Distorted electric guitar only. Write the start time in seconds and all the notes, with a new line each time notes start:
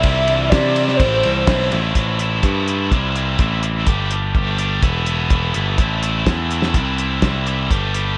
0.04 C3 E3 G3 C4 E4
0.51 C3 E3 G3 C4 E4
0.74 G3 C4 E4
0.98 A2 E3 A3 C4 E4
1.47 E3 A3 C4 E4
1.72 A3 C4 E4
1.96 A2 E3 A3 C4 E4
2.19 A2 E3 A3 C4 E4
2.43 A2 E3 A3 C4 E4
2.67 A2 E3 A3 C4 E4
2.92 C3 E3 G3 C4 E4
3.15 C3 E3 G3 C4 E4
3.39 C3 E3 G3 C4 E4
3.63 C3 E3 G3 C4 E4
3.88 G3 A3 D4 G4
4.12 G3 A3 D4 G4
4.35 G3 A3 D4 G4
4.58 G3 A3 D4 G4
4.82 E2 B2 E3 A3 B3 E4
5.05 E2 B2 E3 A3 B3 E4
5.30 E2 B2 E3 A3 B3 E4
5.53 E2 B2 E3 A3 B3 E4
5.78 A2 E3 A3 C4 E4
6.03 A2 E3 A3 C4 E4
6.27 A2 E3 A3 C4 E4
6.51 A2 E3 A3 C4 E4
6.75 C3 E3 G3 C4 E4
7.00 C3 E3 G3 C4 E4
7.23 C3 E3 G3 C4 E4
7.47 C3 E3 G3 C4 E4
7.70 G3 A3 D4 G4
7.94 G3 A3 D4 G4